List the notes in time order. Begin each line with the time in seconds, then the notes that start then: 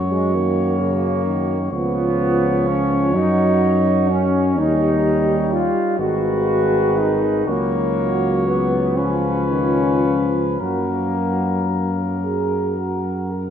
Already playing: F#2 F#3 F#4 C#5
0.11 G#3
0.35 D#3 A#3
0.81 C#3
1.26 D#3
1.71 C#2 F3 B3 F4 C#5
2.66 C#4
3.13 F#2 F#3 D#4 F#4
4.10 C#4
4.58 D#2 G3 D#4 G4
5.51 F4
5.98 G#1 D#3 F#4 G#4 B4
6.97 D#4
7.47 C#2 F#3 A#3 F#4 C#5
8.47 B3
8.97 F3 C#4 F4 B4
9.51 D#3
10.05 F3
10.60 F#2 F#3 A#3 F#4 A#4
12.23 G#4
12.77 F#4
13.32 A#4